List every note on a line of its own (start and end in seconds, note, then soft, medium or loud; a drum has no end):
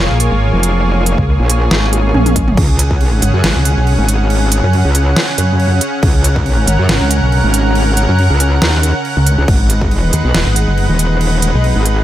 0.00 2.53 A#3 medium
0.00 2.53 F4 medium
0.00 5.99 G#4 medium
0.00 2.53 C#5 loud
0.10 0.30 A#1 loud
0.20 closed hi-hat medium
0.32 0.51 G#1 loud
0.53 1.16 F1 loud
0.63 closed hi-hat medium
1.06 closed hi-hat medium
1.18 1.38 C#2 loud
1.18 kick medium
1.40 1.70 A#1 medium
1.50 closed hi-hat medium
1.71 2.13 G#1 loud
1.71 snare loud
1.71 swell medium
1.93 closed hi-hat medium
1.93 high tom medium
2.14 2.56 A#1 loud
2.14 mid tom medium
2.26 closed hi-hat soft
2.26 mid tom medium
2.36 kick medium
2.36 closed hi-hat medium
2.48 mid tom medium
2.57 3.21 C#2 loud
2.57 9.44 C#3 medium
2.57 9.44 C#4 medium
2.57 12.04 F#5 loud
2.57 kick loud
2.57 crash medium
2.79 closed hi-hat medium
2.91 kick medium
3.01 crash soft
3.22 3.32 G#1 loud
3.22 closed hi-hat medium
3.34 3.42 F#2 loud
3.44 3.54 G#1 loud
3.44 snare loud
3.44 crash medium
3.56 3.75 C#2 loud
3.65 closed hi-hat medium
3.77 3.97 B1 loud
3.87 crash medium
3.99 4.62 G#1 loud
4.09 closed hi-hat medium
4.30 crash medium
4.52 closed hi-hat medium
4.63 4.83 F#2 loud
4.73 crash soft
4.85 5.15 C#2 loud
4.95 closed hi-hat medium
5.16 snare loud
5.16 crash medium
5.38 5.80 F#2 loud
5.38 closed hi-hat medium
5.60 crash medium
5.81 closed hi-hat medium
6.03 6.66 C#2 loud
6.03 9.45 A#4 medium
6.03 kick loud
6.03 crash medium
6.24 closed hi-hat medium
6.36 kick medium
6.46 crash soft
6.67 6.77 G#1 medium
6.67 closed hi-hat medium
6.79 6.88 F#2 loud
6.89 6.99 G#1 loud
6.89 snare loud
6.89 crash medium
7.01 7.21 C#2 loud
7.11 closed hi-hat medium
7.22 7.42 B1 loud
7.32 crash soft
7.44 8.07 G#1 loud
7.54 closed hi-hat medium
7.75 crash medium
7.97 closed hi-hat medium
8.09 8.28 F#2 loud
8.19 crash soft
8.30 8.60 C#2 loud
8.40 closed hi-hat medium
8.62 8.93 D#2 loud
8.62 snare loud
8.62 crash medium
8.83 closed hi-hat medium
9.05 crash soft
9.17 9.36 C#2 medium
9.27 closed hi-hat medium
9.38 9.47 C#2 loud
9.48 10.11 G#1 loud
9.48 12.04 G#3 medium
9.48 12.04 D#4 medium
9.48 12.04 B4 medium
9.48 kick loud
9.48 crash medium
9.70 closed hi-hat medium
9.81 kick medium
9.91 crash soft
10.13 10.23 D#2 loud
10.13 closed hi-hat medium
10.25 10.33 B1 loud
10.34 10.44 D#1 loud
10.34 snare loud
10.34 crash medium
10.46 10.66 G#1 loud
10.56 closed hi-hat medium
10.68 10.87 F#1 loud
10.78 crash soft
10.89 11.52 D#1 loud
10.99 closed hi-hat medium
11.21 crash medium
11.42 closed hi-hat medium
11.54 11.74 B1 loud
11.64 crash soft
11.76 12.04 G#1 loud
11.86 closed hi-hat medium